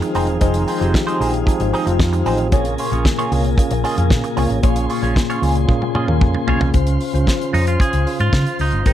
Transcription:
Already playing: D#3 F3 G#3 C4 D#4 F4 G#4 A#4
0.02 muted clean electric guitar stroke, closed hi-hat
0.14 F1 F3 C4 D#4 G#4 C5, open hi-hat
0.27 E1, muted clean electric guitar stroke, closed hi-hat
0.40 F1 F3 C4 D#4 G#4 C5, kick, closed hi-hat
0.54 closed hi-hat
0.67 C4 D#4 G#4 C5, open hi-hat
0.80 F1 F3 C4 D#4 G4 G#4 C5, closed hi-hat
0.94 muted clean electric guitar stroke, kick, snare
1.07 C4 D#4 G#4 C5, closed hi-hat
1.19 A#1 F3 C4 D#4 G#4 C5, open hi-hat
1.34 muted clean electric guitar stroke, closed hi-hat
1.46 F3 C4 D#4 G#4, kick, closed hi-hat
1.60 G#1, muted clean electric guitar stroke, closed hi-hat
1.74 C4 D#4 G#4 D#5, open hi-hat
1.85 F1 F3 C4 D#4 F4, muted clean electric guitar stroke, closed hi-hat
1.99 F2, kick, snare
2.13 G4 D#5, muted clean electric guitar stroke, closed hi-hat
2.26 A1 C4 D#4 G#4 C5, open hi-hat
2.38 C4 G#4, muted clean electric guitar stroke, closed hi-hat
2.52 A#1 A#2 C#3 A#3 C#4 F4 G#4 C#5, kick, closed hi-hat
2.65 closed hi-hat
2.78 C#4 F4 G#4 C#5, open hi-hat
2.91 A#1 A#2 A#3 C#4 F4 G#4 C#5, closed hi-hat
3.05 kick, snare
3.19 C#4 F4 G#4 C#5, closed hi-hat
3.31 C2 A#2 A#3 C#4 F4 G#4 C#5, open hi-hat
3.44 muted clean electric guitar stroke, closed hi-hat
3.58 A#2 A#3 C#4 G#4, muted clean electric guitar stroke, kick, closed hi-hat
3.71 A#1, muted clean electric guitar stroke, closed hi-hat
3.84 C#4 F4 G#4 D#5, open hi-hat
3.96 F2 A#2 A#3 C#4 G#4, muted clean electric guitar stroke, closed hi-hat
4.10 A#2, kick, snare
4.24 muted clean electric guitar stroke, closed hi-hat
4.36 C2 A#2 A#3 C#4 F4 G#4 C#5, open hi-hat
4.50 A1, muted clean electric guitar stroke, closed hi-hat
4.62 A#1 A#2 A#3 C#4 F4 G#4 C5 C#5, kick, closed hi-hat
4.76 closed hi-hat
4.89 C#4 F4 G#4 C#5, open hi-hat
5.02 A#1 A#2 A#3 C#4 F4 G#4 C#5, closed hi-hat
5.16 kick, snare
5.30 C#4 F4 G#4 C#5, closed hi-hat
5.41 C#2 A#2 A#3 C#4 F4 G#4 C#5, open hi-hat
5.55 muted clean electric guitar stroke, closed hi-hat
5.67 A#2 A#3 C#4 G#4, kick, high tom
5.82 muted clean electric guitar stroke, high tom
5.95 A#2 C#4 F4 G#4 D#5, mid tom
6.07 D#2 A#2 A#3 C#4 A#4, muted clean electric guitar stroke, mid tom
6.21 F2, kick, mid tom
6.34 muted clean electric guitar stroke, mid tom
6.47 B1 A#2 A#3 C#4 F4 G#4 C#5, floor tom
6.61 C2, muted clean electric guitar stroke, floor tom
6.73 C#2 C#3 C#4 F4 C5, kick, closed hi-hat
6.87 closed hi-hat
7.01 open hi-hat
7.13 C#2 C#3 C#4 F4 C5, closed hi-hat
7.27 kick, snare
7.42 closed hi-hat
7.52 F2 C#3 C#4 D#4 F4 C5, open hi-hat
7.67 F4, closed hi-hat
7.80 G#4, kick, closed hi-hat
7.93 C#2, closed hi-hat
8.06 C#3 C#4 F4 C5, open hi-hat
8.20 G#2 F4, closed hi-hat
8.33 C#3, kick, snare
8.46 closed hi-hat
8.59 C#2 D#4, open hi-hat
8.72 G1, closed hi-hat
8.85 G#1 C3 G#3 A#3 D#4 G4 A#4 C5, kick, closed hi-hat

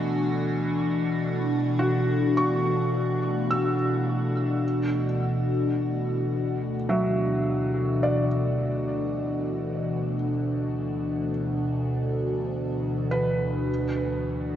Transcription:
Already playing: D2 B2 E3 A3 D4 F#4
1.79 F#4
2.37 C#6
3.51 E6
4.64 D2
6.89 F#3 E5
8.03 D5
13.11 B4
13.79 B2

